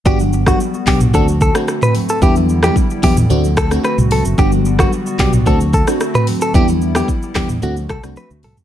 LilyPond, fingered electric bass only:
\new Staff \with { instrumentName = "Fingered electric bass" } { \clef bass \time 4/4 \key g \major \tempo 4 = 111 g,,4 r8 b,,8 d,8. r4 r16 | e,4 r8 e,8 d,4 r16 c,8 fis,,16 | g,,4 r8 b,,8 d,8. r4 r16 | e,4 r8 e,8 d,8 c,16 c,16 r16 d,16 c,16 r16 | }